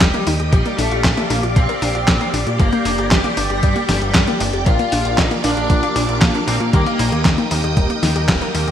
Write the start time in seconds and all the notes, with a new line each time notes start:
Already playing: G3 G4 D#5 G5 D#6
0.01 D#1 G3, kick, snare, clap, closed hi-hat
0.14 A#3, closed hi-hat
0.27 D#2 D#4, open hi-hat
0.40 D#2 G4, closed hi-hat
0.53 A#1 F3 G3 G4 D5 F5 D6, kick, closed hi-hat
0.66 A#3, closed hi-hat
0.78 A#1 A3 D4 A4, open hi-hat
0.91 A#1 F4, closed hi-hat
1.04 A#1 F3, kick, snare, clap, closed hi-hat
1.17 A#3, closed hi-hat
1.30 A#1 A#3 D4 A#4, open hi-hat
1.43 A#1 F4, closed hi-hat
1.56 A#1 F3 C4 C5, kick, closed hi-hat
1.69 A#3, closed hi-hat
1.82 A#1 D4, open hi-hat
1.95 A#1 F4, closed hi-hat
2.08 A#2 F3, kick, snare, clap, closed hi-hat
2.21 A#3, closed hi-hat
2.34 A#1 D4, open hi-hat
2.47 A#2 F4, closed hi-hat
2.60 G1 G3 A#3 A#4 G5, kick, closed hi-hat
2.73 A#3, closed hi-hat
2.85 F1 D4, open hi-hat
2.98 G1 G4, closed hi-hat
3.11 G1 G3 G4, kick, snare, clap, closed hi-hat
3.24 A#3, closed hi-hat
3.37 G1 D4, open hi-hat
3.50 G1 G4, closed hi-hat
3.63 G2 G3, kick, closed hi-hat
3.76 A#3, closed hi-hat
3.89 G1 D4, snare, open hi-hat
4.02 G1 G4, closed hi-hat
4.15 G2 G3, kick, snare, clap, closed hi-hat
4.27 A#3, closed hi-hat
4.40 G1 D4, open hi-hat
4.53 F1 G4, closed hi-hat
4.66 A#1 F3 A#3 D4 F4 A#4 F5 D6, kick, closed hi-hat
4.79 A#3, closed hi-hat
4.92 A#1 D4, open hi-hat
5.05 A#1 F4, closed hi-hat
5.18 A#1 F3 D#4 D#5, kick, snare, clap, closed hi-hat
5.31 A#3, closed hi-hat
5.44 A#1 A#3 D4 F4 A#4 D5, open hi-hat
5.57 A#1 F4, closed hi-hat
5.70 A#1 F3, kick, closed hi-hat
5.83 A#3, closed hi-hat
5.96 A#1 D4, open hi-hat
6.09 A#1 A#3 D4 F4 A#4, closed hi-hat
6.22 A#2 F3, kick, snare, clap, closed hi-hat
6.35 A#3, closed hi-hat
6.47 A#1 A#3 C4 D4 F4 A#4 C5, open hi-hat
6.60 A#2 F4, closed hi-hat
6.73 D#2 G3 A#3 D#4 G4 A#4 D#5 G5 D#6, kick, closed hi-hat
6.86 A#3, closed hi-hat
6.99 A#1 D#4, open hi-hat
7.12 D#2 G4, closed hi-hat
7.25 D#2 G3, kick, snare, clap, closed hi-hat
7.38 A#3, closed hi-hat
7.51 D#2 A#3 D#4 G4 A#4, open hi-hat
7.64 D#2 G4, closed hi-hat
7.77 D#1 G3, kick, closed hi-hat
7.90 A#3, closed hi-hat
8.03 D#2 D#4, snare, open hi-hat
8.16 D#2 A#3 D#4 G4 A#4, closed hi-hat
8.29 D#1 G3, kick, snare, clap, closed hi-hat
8.42 A#3, closed hi-hat
8.54 D#2 A#3 D#4 G4 A#4, open hi-hat
8.68 D#2 G4, closed hi-hat